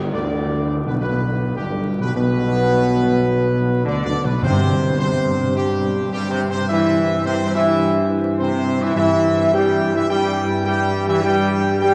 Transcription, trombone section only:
0.00 0.10 G2 medium
0.12 0.81 D3 medium
0.84 0.97 B2 medium
0.99 1.53 B2 medium
1.57 1.97 G2 medium
2.00 2.13 B2 medium
2.14 3.82 B2 loud
3.85 4.04 D3 loud
4.05 4.23 D3 loud
4.25 4.42 B2 medium
4.43 4.96 C3 loud
5.01 5.53 C3 loud
5.57 6.11 G2 loud
6.12 6.21 G2 loud
6.31 6.48 C3 loud
6.51 6.68 C3 loud
6.70 7.23 E3 loud
7.25 7.34 C3 loud
7.45 7.49 C3 loud
7.54 8.08 E3 loud
8.40 8.79 C3 loud
8.82 8.94 E3 loud
8.95 9.49 E3 loud
9.52 9.96 G3 loud
9.95 10.02 E3 loud
10.09 10.62 G3 loud
10.66 11.06 G3 loud
11.08 11.22 E3 loud
11.22 11.77 G3 loud
11.80 11.94 G3 loud

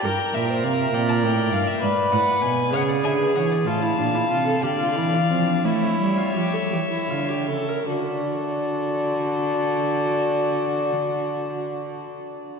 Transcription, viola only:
0.04 1.81 A#4 loud
1.82 2.71 B4 loud
2.73 3.68 G#4 loud
3.66 3.84 F4 medium
3.82 3.98 E4 medium
3.98 4.16 D4 medium
4.14 4.30 E4 medium
4.31 4.46 F4 medium
4.47 4.63 A4 medium
4.63 4.70 G4 medium
4.80 4.96 F4 medium
4.96 5.03 E4 medium
5.13 5.20 D4 medium
5.31 5.49 C4 medium
5.48 5.66 D4 medium
5.65 6.19 E4 medium
6.17 6.35 F4 medium
6.36 6.55 G4 medium
6.53 6.71 A4 medium
6.72 6.79 G4 medium
6.90 7.11 E4 medium
7.10 7.30 F4 medium
7.28 7.47 G4 medium
7.48 7.70 A4 medium
7.68 7.87 A#4 medium
7.88 12.60 F#4 medium

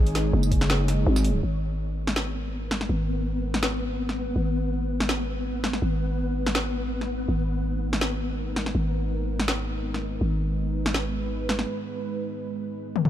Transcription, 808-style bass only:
0.00 0.32 G#1 loud
0.33 1.05 F#1 loud
1.06 1.42 G#1 loud
1.43 2.88 G#1 medium
2.89 4.34 G#1 medium
4.36 5.80 G#1 medium
5.82 7.27 G#1 medium
7.28 8.73 G#1 medium
8.75 10.19 G#1 medium
10.21 11.66 G#1 medium

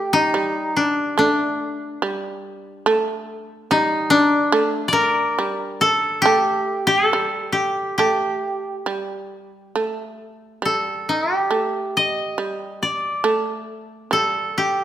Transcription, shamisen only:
0.00 0.34 A3 medium
0.34 1.17 G3 medium
1.18 2.01 A3 medium
2.02 2.86 G3 medium
2.86 3.70 A3 medium
3.71 4.52 G3 medium
4.52 5.37 A3 medium
5.39 6.24 G3 medium
6.26 7.11 A3 medium
7.13 7.99 G3 medium
7.99 8.86 A3 medium
8.86 9.75 G3 medium
9.76 10.62 A3 medium
10.62 11.50 G3 medium
11.51 12.38 A3 medium
12.38 13.24 G3 medium
13.24 14.10 A3 medium
14.11 14.84 G3 medium

